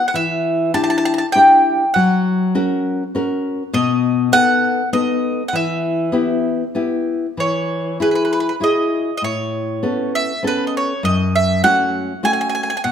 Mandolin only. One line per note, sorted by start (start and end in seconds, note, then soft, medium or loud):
0.08 0.14 F#5 medium
0.16 0.71 E5 medium
0.74 0.81 A5 loud
0.84 0.89 A5 medium
0.90 0.97 A5 medium
0.98 1.04 A5 medium
1.05 1.12 A5 medium
1.14 1.17 A5 medium
1.18 1.26 A5 medium
1.32 1.89 G5 medium
1.94 3.39 F#5 medium
3.74 4.30 D#5 medium
4.33 4.89 F#5 loud
4.93 5.43 D#5 medium
5.48 5.54 F#5 medium
5.56 6.73 E5 medium
7.40 7.97 C#5 medium
8.02 8.08 B4 medium
8.11 8.14 B4 soft
8.15 8.22 B4 medium
8.25 8.31 B4 soft
8.33 8.39 B4 medium
8.40 8.46 B4 medium
8.49 8.54 B4 medium
8.64 9.16 D#5 medium
9.17 9.23 D#5 medium
9.24 10.11 C#5 medium
10.15 10.42 E5 medium
10.47 10.67 B4 medium
10.67 10.74 D#5 medium
10.77 11.03 C#5 medium
11.05 11.32 D#5 medium
11.35 11.62 E5 medium
11.64 12.20 F#5 loud
12.25 12.31 G#5 loud
12.33 12.39 G#5 medium
12.41 12.47 G#5 medium
12.49 12.54 G#5 medium
12.55 12.61 G#5 medium
12.63 12.69 G#5 medium
12.70 12.76 G#5 medium
12.77 12.84 G#5 medium
12.84 12.92 F#5 medium